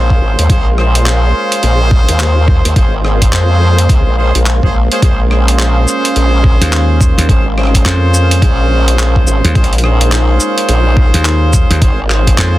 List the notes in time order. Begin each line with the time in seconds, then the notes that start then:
Already playing: A#1 G#3 A#3 C#4 F4 G#4 A#4 C5 F5 C6
0.10 kick
0.21 G#1
0.38 D#2, closed hi-hat
0.49 A#1 C#4 F4 G#4 C5, kick, closed hi-hat
0.78 C#4 F4 G#4 C5, cross-stick
0.95 closed hi-hat
1.06 clap, closed hi-hat
1.52 closed hi-hat
1.63 A#1, closed hi-hat
1.91 kick
2.08 D#2, closed hi-hat
2.20 clap, closed hi-hat
2.48 kick
2.65 D#2, cross-stick, closed hi-hat
2.76 G#1 C#4 F4 G#4 C5, kick, closed hi-hat
3.04 C#4 F4 G#4 C5, cross-stick
3.22 kick, closed hi-hat
3.32 F2, clap, closed hi-hat
3.78 closed hi-hat
3.89 C#2, kick, closed hi-hat
4.06 A#1
4.18 C#4 F4 G#4 C5
4.35 A#1, closed hi-hat
4.46 clap, closed hi-hat
4.63 A#1 C#4 F4 G#4 C5, kick
4.91 C#4 F4 G#4 C5, closed hi-hat
5.02 A#1 C#4 F4 G#4 C5, kick, closed hi-hat
5.31 C#4 F4 G#4 C5, cross-stick
5.48 closed hi-hat
5.59 clap, closed hi-hat
5.88 shaker
6.05 closed hi-hat
6.16 A#1, closed hi-hat
6.44 kick
6.61 D#2, closed hi-hat
6.73 clap, closed hi-hat
7.01 kick, shaker
7.18 D#2, cross-stick, closed hi-hat
7.29 G#1 C#4 F4 G#4 C5, kick, closed hi-hat
7.57 C#4 F4 G#4 C5, cross-stick
7.63 cross-stick
7.67 cross-stick
7.75 kick, cross-stick, closed hi-hat
7.82 F2, cross-stick, clap, closed hi-hat
8.14 shaker
8.31 closed hi-hat
8.42 A#1, kick, closed hi-hat
8.88 closed hi-hat
8.99 clap, closed hi-hat
9.16 kick
9.27 G#1, shaker
9.44 D#2, closed hi-hat
9.55 A#1 C#4 D#4 F4 G#4 C5, kick, closed hi-hat
9.64 closed hi-hat
9.73 closed hi-hat
9.78 closed hi-hat
9.84 C#4 F4 G#4 C5, cross-stick
10.01 closed hi-hat
10.12 clap, closed hi-hat
10.40 shaker
10.58 closed hi-hat
10.69 A#1, closed hi-hat
10.97 kick
11.14 D#2, closed hi-hat
11.25 clap, closed hi-hat
11.53 kick, shaker
11.70 D#2, cross-stick, closed hi-hat
11.82 G#1 C#4 F4 G#4 C5, kick, closed hi-hat
12.10 C#4 F4 G#4 C5, cross-stick, clap
12.27 kick, closed hi-hat
12.38 F2, clap, closed hi-hat